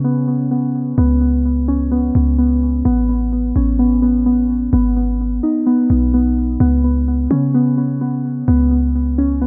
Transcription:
0.00 0.94 C#3 loud
0.00 1.21 C#4 medium
0.04 0.26 B3 medium
0.28 0.50 B3 medium
0.51 0.97 B3 medium
0.98 2.11 C#2 loud
0.98 1.20 B3 loud
1.21 1.90 B3 medium
1.68 2.85 C#4 medium
1.91 2.14 B3 medium
2.15 2.83 C#2 loud
2.15 2.37 B3 medium
2.38 2.84 B3 medium
2.85 3.53 A1 loud
2.85 3.08 B3 loud
3.09 3.78 B3 medium
3.56 4.69 A1 loud
3.56 4.73 C#4 medium
3.79 4.01 B3 medium
4.02 4.25 B3 medium
4.26 4.72 B3 medium
4.73 5.40 G#1 loud
4.73 4.95 B3 medium
4.96 5.65 B3 medium
5.43 6.60 D#4 medium
5.66 5.89 B3 medium
5.90 6.58 B1 loud
5.90 6.13 B3 medium
6.14 6.59 B3 medium
6.60 7.28 C#2 loud
6.60 6.83 B3 loud
6.84 7.53 B3 medium
7.30 8.44 C#3 loud
7.30 8.71 C#4 medium
7.54 7.76 B3 medium
7.78 8.00 B3 medium
8.01 8.47 B3 medium
8.48 9.47 C#2 loud
8.48 8.70 B3 medium
8.71 9.40 B3 medium
9.18 9.47 C#4 medium
9.41 9.47 B3 medium

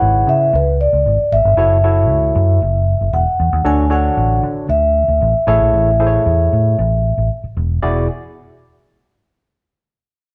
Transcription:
0.00 0.23 G#1 medium
0.00 0.24 C#3 medium
0.00 0.51 E4 medium
0.00 0.51 G#4 medium
0.00 0.51 B4 medium
0.00 0.55 C#5 medium
0.00 0.30 F#5 medium
0.27 0.49 C#3 loud
0.27 0.55 E5 loud
0.53 0.86 C#2 loud
0.53 0.67 B4 medium
0.81 1.34 D5 medium
0.93 1.03 C#2 medium
1.06 1.16 G#1 medium
1.32 1.42 G#1 medium
1.32 3.19 E5 medium
1.45 1.55 G1 loud
1.57 2.09 F#1 loud
1.57 1.76 E4 medium
1.57 1.76 F#4 medium
1.57 1.76 A4 medium
1.57 1.77 C#5 medium
1.84 2.59 E4 medium
1.84 2.59 F#4 medium
1.84 2.59 A4 medium
1.84 2.60 C#5 medium
2.09 2.31 C#2 medium
2.35 2.57 F#2 loud
2.62 2.94 F#1 medium
3.01 3.11 F#1 medium
3.13 3.24 E1 medium
3.13 3.67 F#5 medium
3.40 3.50 E2 medium
3.53 3.63 D#2 loud
3.65 4.08 D2 loud
3.65 4.39 D3 medium
3.65 3.84 D4 medium
3.65 3.84 F#4 medium
3.65 3.84 A4 medium
3.65 3.84 C#5 medium
3.65 3.93 G#5 loud
3.90 4.66 D4 medium
3.90 4.66 F#4 medium
3.90 4.67 A4 medium
3.90 4.67 C#5 medium
3.90 4.40 F#5 medium
4.17 4.39 A1 medium
4.43 4.65 D3 loud
4.69 5.01 D2 loud
4.69 5.47 E5 loud
5.08 5.19 D2 medium
5.21 5.32 A1 medium
5.47 5.58 A1 medium
5.47 6.22 A2 medium
5.47 5.89 E4 medium
5.47 5.89 G#4 medium
5.47 5.89 A4 medium
5.47 5.89 C#5 medium
5.47 7.26 E5 loud
5.60 5.71 A#1 medium
5.74 6.17 A1 loud
6.00 6.75 E4 medium
6.00 6.75 G#4 medium
6.00 6.76 A4 medium
6.00 6.06 C5 medium
6.06 6.79 C#5 medium
6.26 6.47 E2 medium
6.53 6.74 A2 medium
6.79 7.11 A1 loud
7.18 7.28 A1 medium
7.44 muted fingered electric bass stroke soft
7.57 7.78 E1 medium
7.82 8.07 E1 medium
7.82 8.07 E2 medium
7.82 8.07 E4 medium
7.82 8.07 F#4 medium
7.82 8.07 G#4 medium
7.82 8.07 D5 medium

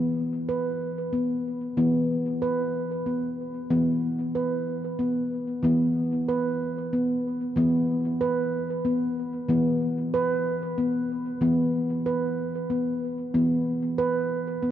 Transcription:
0.00 1.74 E3 medium
0.00 0.49 B3 medium
0.49 1.13 B4 medium
1.13 1.76 B3 medium
1.77 3.66 E3 medium
1.77 2.42 B3 medium
2.42 3.06 B4 medium
3.06 3.70 B3 medium
3.70 5.60 E3 medium
3.70 4.35 B3 medium
4.35 4.99 B4 medium
4.99 5.63 B3 medium
5.63 7.52 E3 medium
5.63 6.28 B3 medium
6.28 6.92 B4 medium
6.93 7.56 B3 medium
7.56 9.45 E3 medium
7.56 8.21 B3 medium
8.21 8.85 B4 medium
8.85 9.48 B3 medium
9.49 11.37 E3 medium
9.49 10.13 B3 medium
10.13 10.77 B4 medium
10.78 11.40 B3 medium
11.41 13.30 E3 medium
11.41 12.05 B3 medium
12.06 12.70 B4 medium
12.70 13.33 B3 medium
13.34 14.71 E3 medium
13.34 13.98 B3 medium
13.98 14.62 B4 medium
14.63 14.71 B3 medium

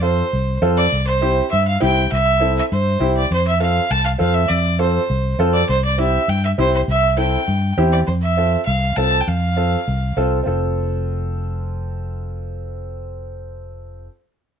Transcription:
0.00 0.21 F2 medium
0.00 0.23 C4 medium
0.00 0.24 F4 medium
0.00 0.24 A4 medium
0.00 0.58 C5 medium
0.33 0.57 C2 medium
0.62 0.86 F2 loud
0.62 0.83 C4 medium
0.62 0.83 F4 medium
0.62 0.83 A4 loud
0.77 1.05 D5 loud
0.92 1.40 C2 medium
1.07 1.49 C5 medium
1.21 1.43 C4 medium
1.21 1.43 E4 medium
1.21 1.43 G4 medium
1.51 1.76 G2 medium
1.51 1.65 E5 medium
1.67 1.81 F5 medium
1.80 2.06 C2 loud
1.80 2.02 C4 medium
1.80 2.02 E4 medium
1.80 2.02 G4 medium
1.80 2.10 G5 loud
2.12 2.60 C2 medium
2.12 2.54 E5 loud
2.40 2.62 C4 medium
2.40 2.62 E4 medium
2.40 2.62 A4 medium
2.59 2.65 E5 medium
2.72 2.96 G2 medium
2.72 3.13 C5 medium
3.00 3.24 C2 medium
3.00 3.21 C4 medium
3.00 3.22 E4 medium
3.00 3.22 G4 medium
3.17 3.30 D5 medium
3.31 3.78 F2 medium
3.31 3.46 C5 medium
3.47 3.60 E5 medium
3.60 3.81 C4 medium
3.60 3.81 F4 medium
3.60 3.81 A4 medium
3.60 3.92 F5 medium
3.91 4.14 C2 medium
3.91 4.05 A5 loud
4.05 4.12 F5 medium
4.18 4.44 F2 loud
4.18 4.40 C4 medium
4.18 4.40 F4 medium
4.18 4.41 A4 medium
4.18 4.36 F5 medium
4.34 4.50 E5 medium
4.49 4.98 F2 medium
4.49 4.79 D5 loud
4.79 5.00 C4 medium
4.79 5.00 F4 medium
4.79 5.00 A4 medium
4.79 5.36 C5 medium
5.10 5.34 C2 medium
5.39 5.63 F2 medium
5.39 5.60 C4 medium
5.39 5.60 F4 medium
5.39 5.60 A4 loud
5.53 5.68 D5 medium
5.69 6.17 C2 loud
5.69 5.83 C5 medium
5.84 5.98 D5 medium
5.98 6.19 C4 medium
5.98 6.20 E4 medium
5.98 6.20 G4 medium
5.98 6.31 E5 medium
6.28 6.52 G2 medium
6.28 6.44 G5 medium
6.45 6.51 E5 medium
6.58 6.82 C2 medium
6.58 6.79 C4 medium
6.58 6.79 E4 medium
6.58 6.79 G4 medium
6.58 6.73 C5 medium
6.75 6.82 C5 medium
6.88 7.36 C2 loud
6.88 7.17 E5 loud
7.17 7.38 C4 medium
7.17 7.38 E4 medium
7.17 7.39 A4 medium
7.17 7.74 G5 medium
7.48 7.72 G2 medium
7.77 8.01 E2 medium
7.77 7.98 C4 medium
7.77 7.99 E4 medium
7.77 7.99 G4 loud
7.92 7.99 D5 medium
8.07 8.55 F2 medium
8.07 8.14 C5 medium
8.21 8.63 E5 medium
8.37 8.58 C4 medium
8.37 8.58 F4 medium
8.37 8.59 A4 medium
8.66 8.91 C2 loud
8.66 8.98 F5 medium
8.96 9.21 C2 medium
8.96 9.18 C4 medium
8.96 9.18 F4 medium
8.96 9.18 A4 medium
8.96 9.22 A5 loud
9.20 9.29 G5 medium
9.28 9.75 F2 medium
9.28 10.17 F5 medium
9.57 9.77 C4 medium
9.57 9.78 F4 medium
9.57 9.78 A4 medium
9.88 10.11 C2 medium
10.17 10.40 C2 medium
10.17 10.37 C4 medium
10.17 10.37 F4 medium
10.17 10.38 A4 medium
10.43 14.07 F1 medium
10.43 14.04 C4 medium
10.43 14.06 F4 medium
10.47 14.08 A4 medium

